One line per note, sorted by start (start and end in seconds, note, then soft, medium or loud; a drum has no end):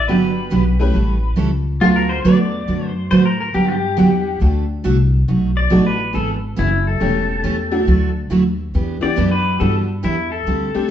0.08 0.51 G1 medium
0.08 0.30 D3 medium
0.08 0.31 F#3 medium
0.08 0.74 G3 medium
0.08 0.31 B3 medium
0.08 0.74 B3 medium
0.08 0.31 D4 medium
0.08 0.74 D4 medium
0.08 0.75 F#4 medium
0.08 0.31 G4 medium
0.08 0.75 G4 medium
0.08 1.34 B4 medium
0.50 0.94 B1 medium
0.50 0.63 D3 medium
0.50 0.63 F#3 medium
0.50 0.63 B3 medium
0.50 0.63 D4 medium
0.50 0.64 G4 medium
0.80 0.93 A3 medium
0.80 0.94 C#4 medium
0.80 0.94 E4 medium
0.80 0.94 G4 medium
0.80 0.94 B4 medium
0.93 1.37 A1 medium
0.93 1.16 E3 soft
0.93 1.16 G3 medium
0.93 1.16 C#4 medium
0.93 1.17 E4 medium
0.93 1.17 A4 medium
1.36 1.81 C#2 medium
1.36 1.49 E3 medium
1.36 1.49 G3 medium
1.36 1.49 C#4 medium
1.36 1.49 E4 medium
1.36 1.50 A4 medium
1.81 2.24 D2 medium
1.81 2.03 D3 medium
1.81 2.03 F#3 medium
1.81 3.02 A3 medium
1.81 2.03 A3 medium
1.81 3.02 B3 medium
1.81 3.02 D4 medium
1.81 2.04 D4 medium
1.81 1.95 F4 medium
1.81 3.02 F#4 medium
1.81 2.04 F#4 medium
1.81 3.02 A4 medium
1.81 2.04 B4 medium
1.96 2.10 A#4 medium
2.09 2.22 C5 medium
2.22 2.67 E2 medium
2.22 2.36 D3 medium
2.22 2.36 F#3 medium
2.22 2.36 A3 medium
2.22 2.37 D4 medium
2.22 2.37 F#4 medium
2.22 2.37 B4 medium
2.22 2.86 D5 medium
2.68 3.10 F#2 medium
2.68 2.90 D3 medium
2.68 2.90 F#3 soft
2.68 2.90 A3 medium
2.68 2.90 D4 medium
2.68 2.90 F#4 medium
2.68 2.91 B4 medium
2.86 3.07 C5 medium
3.11 3.53 A2 medium
3.11 3.23 D3 medium
3.11 3.23 F#3 medium
3.11 3.23 A3 medium
3.11 3.23 D4 medium
3.11 3.23 F#4 medium
3.11 3.23 B4 medium
3.11 3.25 C5 medium
3.25 3.39 A#4 medium
3.40 3.54 A#4 medium
3.54 3.97 G2 medium
3.54 3.76 D3 medium
3.54 3.76 F#3 medium
3.54 3.77 B3 medium
3.54 3.77 D4 medium
3.54 3.67 G4 medium
3.54 3.77 G4 medium
3.68 4.38 G4 medium
3.97 4.40 E2 medium
3.97 4.09 D3 medium
3.97 4.09 F#3 medium
3.97 4.41 G3 medium
3.97 4.41 B3 medium
3.97 4.09 B3 medium
3.97 4.09 D4 medium
3.97 4.41 D4 soft
3.97 4.09 G4 medium
3.97 4.41 G4 medium
3.97 4.41 F#5 medium
4.40 4.83 D2 medium
4.40 4.62 D3 medium
4.40 4.63 A3 medium
4.40 4.63 D4 medium
4.40 4.63 F#4 medium
4.40 4.63 A4 medium
4.84 5.27 C2 loud
4.84 4.96 D3 medium
4.84 4.96 A3 medium
4.84 4.96 D4 medium
4.84 4.96 F#4 medium
4.84 4.96 A4 medium
5.28 5.70 B1 medium
5.28 5.50 B2 medium
5.28 5.50 F#3 medium
5.28 5.50 A3 medium
5.28 5.50 D#4 medium
5.28 5.50 F#4 medium
5.57 5.85 D5 loud
5.70 6.13 A1 medium
5.70 5.82 B2 medium
5.70 5.82 F#3 medium
5.70 5.82 A3 medium
5.70 5.96 A3 medium
5.70 5.96 B3 medium
5.70 5.83 D#4 medium
5.70 5.96 D#4 medium
5.70 5.83 F#4 medium
5.70 5.97 F#4 medium
5.70 5.97 A4 medium
5.86 6.14 B4 medium
6.13 6.57 G#1 medium
6.13 6.36 E3 medium
6.13 6.36 B3 medium
6.13 6.36 D4 medium
6.13 6.36 G#4 medium
6.13 6.28 A4 medium
6.56 7.00 F#1 medium
6.56 6.69 E3 medium
6.56 6.69 B3 medium
6.56 6.69 D4 medium
6.56 6.86 E4 medium
6.56 6.69 G#4 medium
6.87 8.13 A4 medium
7.00 7.43 E1 medium
7.00 7.23 E3 medium
7.00 7.67 G3 medium
7.00 7.23 A3 medium
7.00 7.66 A3 soft
7.00 7.23 C#4 medium
7.00 7.67 C#4 medium
7.00 7.67 E4 medium
7.00 7.23 G4 medium
7.00 7.67 G4 medium
7.44 7.86 E2 medium
7.44 7.55 E3 medium
7.44 7.56 A3 medium
7.44 7.56 C#4 medium
7.44 7.56 G4 medium
7.71 7.85 F#3 medium
7.71 7.86 A3 medium
7.71 7.86 D4 medium
7.71 7.86 E4 medium
7.71 7.86 F#4 medium
7.87 8.30 D2 medium
7.87 8.09 D3 medium
7.87 8.09 F#3 medium
7.87 8.10 A3 medium
7.87 8.10 E4 medium
7.87 8.10 F#4 medium
8.30 8.73 D#2 medium
8.30 8.42 D3 medium
8.30 8.42 F#3 medium
8.30 8.42 A3 medium
8.30 8.42 E4 medium
8.30 8.43 F#4 medium
8.74 9.00 E2 medium
8.74 8.96 E3 medium
8.74 8.96 B3 medium
8.74 8.97 D4 medium
8.74 8.97 G4 medium
9.01 9.57 E3 medium
9.01 9.57 B3 medium
9.01 9.58 D4 medium
9.01 9.58 E4 medium
9.01 9.58 G4 medium
9.01 9.31 D5 loud
9.01 muted upright bass stroke soft
9.16 9.59 F#2 loud
9.16 9.28 E3 medium
9.16 9.28 B3 medium
9.16 9.29 D4 medium
9.16 9.29 G4 loud
9.31 9.59 B4 medium
9.60 10.03 G2 medium
9.60 9.82 E3 medium
9.60 9.85 G3 medium
9.60 9.85 B3 medium
9.60 9.83 B3 medium
9.60 9.85 D4 medium
9.60 9.83 D4 medium
9.60 9.86 E4 medium
9.60 9.86 F#4 medium
9.60 9.83 G4 medium
9.60 9.74 A4 loud
10.03 10.46 E2 medium
10.03 10.15 E3 medium
10.03 10.15 B3 medium
10.03 10.15 D4 medium
10.03 10.31 E4 medium
10.03 10.15 G4 medium
10.32 10.91 A4 medium
10.46 10.73 D2 medium
10.46 10.69 D3 medium
10.46 10.69 G3 medium
10.46 10.69 C4 medium
10.46 10.69 D4 medium
10.46 10.69 G4 medium
10.74 10.88 G3 medium
10.74 10.88 A3 medium
10.74 10.88 C4 medium
10.74 10.89 D4 medium
10.74 10.89 G4 medium
10.74 muted upright bass stroke soft